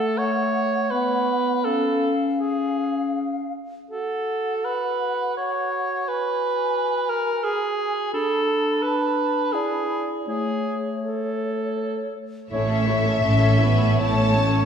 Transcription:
0.00 0.88 A3 medium
0.00 0.19 A4 medium
0.00 1.62 F#5 soft
0.18 0.92 C#5 medium
0.91 1.67 B3 medium
0.91 1.66 B4 medium
1.64 3.57 C#4 soft
1.64 2.14 A4 medium
1.64 3.53 F5 soft
2.40 3.11 G#4 soft
3.90 8.09 F#4 soft
3.90 4.66 A4 soft
3.90 6.04 F#5 soft
4.65 5.36 B4 medium
5.37 6.09 C#5 medium
6.07 7.11 B4 medium
6.07 8.09 G#5 soft
7.09 7.45 A#4 medium
7.44 8.13 G#4 medium
8.13 9.55 D4 medium
8.13 8.84 A4 medium
8.13 8.85 B5 soft
8.82 9.54 B4 medium
8.82 9.56 A5 soft
9.53 10.29 E4 soft
9.53 10.11 G#4 medium
9.53 10.26 D5 soft
10.27 12.18 A3 soft
10.27 10.76 G#4 soft
10.27 12.14 C#5 soft
11.04 12.11 A4 soft
12.51 13.15 A1 medium
12.51 13.16 A2 soft
12.51 12.68 A3 soft
12.51 13.26 A3 soft
12.51 12.78 A3 soft
12.51 12.78 C#4 soft
12.51 12.68 E4 soft
12.51 12.85 C#5 soft
12.51 13.20 C#5 soft
12.51 13.95 E5 medium
12.51 14.01 E5 medium
12.70 12.88 C#4 soft
12.70 12.88 A4 soft
12.87 13.06 A3 soft
12.87 13.06 E4 soft
12.87 14.65 C#5 soft
13.05 13.24 C#4 soft
13.05 13.24 A4 soft
13.23 13.90 A1 soft
13.23 13.91 A2 soft
13.23 13.41 A3 soft
13.23 13.62 C#4 soft
13.23 13.41 E4 soft
13.23 13.62 A4 soft
13.42 13.61 C#4 soft
13.42 13.62 A4 soft
13.60 13.80 A3 soft
13.60 14.02 B3 soft
13.60 13.80 E4 soft
13.60 13.99 B4 soft
13.80 13.99 C#4 soft
13.80 13.99 A4 soft
13.98 14.61 A1 soft
13.98 14.61 A2 soft
13.98 14.15 A3 soft
13.98 14.36 A3 soft
13.98 14.15 E4 soft
13.98 14.65 C#5 soft
13.98 14.65 A5 medium
14.16 14.34 C#4 soft
14.16 14.34 A4 soft
14.33 14.51 A3 soft
14.33 14.65 C#4 soft
14.33 14.51 E4 soft
14.51 14.65 C#4 soft
14.51 14.65 A4 soft

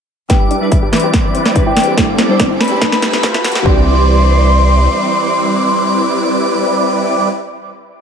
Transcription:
0.29 0.91 E2 medium
0.29 0.59 G3 medium
0.29 0.89 G3 medium
0.29 0.37 B3 loud
0.29 0.59 D4 medium
0.29 0.89 D4 medium
0.29 0.89 E4 medium
0.29 0.59 E4 medium
0.29 0.89 B4 medium
0.29 0.60 B4 medium
0.29 0.89 D5 medium
0.29 0.56 G5 loud
0.29 0.89 D6 medium
0.29 kick medium
0.29 snare soft
0.29 closed hi-hat medium
0.29 riser medium
0.51 0.55 D4 medium
0.51 closed hi-hat medium
0.61 0.90 G3 medium
0.61 0.90 D4 medium
0.61 0.91 E4 medium
0.61 0.91 B4 loud
0.72 0.79 E4 medium
0.72 kick loud
0.72 closed hi-hat medium
0.83 0.89 G4 loud
0.92 1.99 C2 loud
0.92 1.22 E3 medium
0.92 1.94 G3 medium
0.92 1.22 C4 medium
0.92 1.94 C4 medium
0.92 1.22 D4 medium
0.92 1.94 E4 medium
0.92 1.94 B4 medium
0.92 1.23 B4 medium
0.92 1.94 D5 loud
0.92 1.94 D6 loud
0.92 snare medium
0.92 closed hi-hat soft
0.96 closed hi-hat medium
1.00 closed hi-hat medium
1.04 1.13 G4 medium
1.14 1.21 B3 loud
1.14 kick loud
1.14 snare medium
1.14 closed hi-hat medium
1.24 1.53 E3 medium
1.24 1.53 C4 medium
1.24 1.53 D4 medium
1.24 1.54 B4 medium
1.35 1.39 C4 medium
1.35 closed hi-hat medium
1.46 snare medium
1.55 1.95 E3 medium
1.55 1.95 C4 medium
1.55 1.63 D4 medium
1.55 1.95 D4 medium
1.55 1.96 B4 loud
1.55 kick medium
1.55 closed hi-hat medium
1.66 1.73 E4 loud
1.66 1.93 G5 loud
1.77 snare medium
1.77 closed hi-hat medium
1.77 open hi-hat medium
1.83 closed hi-hat medium
1.88 1.97 G4 medium
1.97 2.26 G3 medium
1.97 2.78 G3 medium
1.97 2.05 A3 loud
1.97 2.78 C4 medium
1.97 2.27 D4 medium
1.97 2.78 E4 medium
1.97 2.27 E4 medium
1.97 2.78 A4 medium
1.97 2.27 C5 medium
1.97 2.78 D5 medium
1.97 2.78 D6 medium
1.97 kick loud
1.97 snare medium
1.97 closed hi-hat medium
2.18 2.23 C4 medium
2.18 snare medium
2.18 closed hi-hat medium
2.28 2.58 G3 medium
2.28 2.58 D4 medium
2.28 2.58 E4 medium
2.28 2.59 C5 medium
2.40 2.47 D4 medium
2.40 kick loud
2.40 snare medium
2.40 closed hi-hat medium
2.51 2.57 E4 loud
2.60 2.89 A3 medium
2.60 2.90 C4 medium
2.60 2.90 G4 medium
2.60 2.90 B4 medium
2.60 2.96 B5 loud
2.60 snare medium
2.60 closed hi-hat soft
2.64 closed hi-hat medium
2.68 2.81 G4 medium
2.68 closed hi-hat medium
2.81 3.64 C2 medium
2.81 3.61 G3 medium
2.81 2.89 A3 loud
2.81 3.61 C4 medium
2.81 3.61 E4 medium
2.81 3.61 A4 medium
2.81 3.61 B4 medium
2.81 3.61 B5 medium
2.81 kick loud
2.81 snare medium
2.81 closed hi-hat medium
2.92 3.21 A3 medium
2.92 3.21 C4 medium
2.92 3.21 G4 medium
2.92 3.22 B4 medium
2.92 snare medium
3.02 3.07 B3 medium
3.02 snare loud
3.02 closed hi-hat medium
3.13 snare medium
3.23 3.63 A3 loud
3.23 3.63 C4 medium
3.23 3.31 C4 medium
3.23 3.63 G4 medium
3.23 3.64 B4 loud
3.23 3.41 B5 medium
3.23 kick loud
3.23 snare loud
3.23 closed hi-hat medium
3.34 3.41 E4 loud
3.34 snare medium
3.44 snare loud
3.44 closed hi-hat medium
3.44 open hi-hat medium
3.52 snare loud
3.52 closed hi-hat medium
3.56 3.65 G4 medium
3.63 4.87 C2 loud
3.63 7.26 E3 medium
3.63 7.29 G3 medium
3.63 3.85 B3 medium
3.63 7.28 C4 medium
3.63 7.29 C4 medium
3.63 7.29 E4 medium
3.63 7.29 B4 medium
3.63 7.29 D5 loud
3.63 7.28 C6 loud
3.63 7.28 D6 loud
3.63 kick loud
3.67 7.30 D4 medium
3.67 7.32 D5 medium

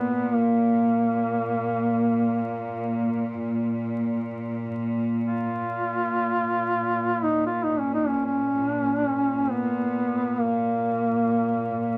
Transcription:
0.00 8.53 A#2 soft
0.00 0.36 B3 medium
0.34 3.52 A#3 medium
5.23 7.25 F4 medium
7.24 7.45 D#4 medium
7.46 7.65 F4 medium
7.63 7.81 D#4 medium
7.79 7.92 C#4 medium
7.94 8.09 D#4 medium
8.07 8.24 C#4 medium
8.26 8.69 C#4 medium
8.55 11.98 A#2 soft
8.69 8.81 D4 medium
8.81 8.93 C#4 medium
8.93 9.05 D4 medium
9.05 9.53 C#4 medium
9.52 10.42 B3 medium
10.40 11.98 A#3 medium

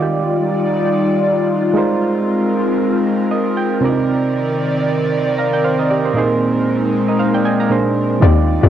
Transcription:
0.00 1.71 D#3 medium
0.00 1.74 G3 medium
0.00 1.72 D#4 medium
0.00 1.74 D#4 medium
0.00 1.72 F4 medium
0.00 3.79 F4 medium
0.00 1.76 G4 medium
0.00 1.74 D5 medium
1.74 3.78 G#3 medium
1.74 3.81 G#3 medium
1.74 3.81 C4 medium
1.74 3.78 D#4 medium
1.74 3.79 F4 medium
1.74 7.67 A#4 medium
1.74 3.79 A#4 medium
1.78 3.80 C5 medium
3.31 3.55 D#5 medium
3.57 4.05 G5 medium
3.81 5.85 C3 medium
3.81 6.13 D#3 medium
3.81 5.85 C4 medium
3.81 8.19 C4 medium
3.81 3.90 D4 medium
3.81 5.36 A#4 medium
3.81 6.13 D5 medium
3.85 5.89 D#4 medium
3.85 5.36 D5 medium
5.38 5.53 F5 soft
5.38 5.52 A#5 medium
5.53 5.64 D5 medium
5.53 5.64 G5 medium
5.64 5.79 C5 medium
5.64 5.78 F5 medium
5.79 5.90 A#4 medium
5.79 5.89 D#5 medium
5.90 6.05 G4 medium
5.90 6.04 D5 medium
6.05 6.30 G4 soft
6.05 6.17 C5 medium
6.14 7.67 A#2 medium
6.14 8.20 G#3 medium
6.14 7.67 A#3 medium
6.14 7.69 D#4 medium
6.14 7.68 D#4 medium
6.14 7.69 G#4 medium
6.18 6.93 C5 medium
7.08 7.19 A#4 medium
7.08 7.19 D#5 medium
7.19 7.34 C5 medium
7.19 7.33 F5 medium
7.34 7.45 D5 medium
7.34 7.44 G5 medium
7.45 7.60 D#5 medium
7.45 7.59 G#5 medium
7.60 7.85 F5 medium
7.60 7.85 A#5 medium
7.70 8.22 A#2 medium
7.70 8.22 A#3 medium
7.70 8.23 D4 medium
7.70 8.23 G#4 medium
7.70 8.23 C5 medium
8.20 8.59 D#2 loud
8.20 8.69 D#3 medium
8.20 8.69 G3 medium
8.20 8.69 D#4 medium
8.20 8.32 F4 loud
8.20 8.69 F4 medium
8.20 8.32 G4 medium
8.20 8.69 G4 medium
8.20 8.69 D5 medium
8.20 8.32 D5 loud
8.25 8.69 D5 medium
8.63 8.69 D#2 loud
8.63 8.69 F4 medium
8.63 8.69 G4 medium
8.63 8.69 D5 medium

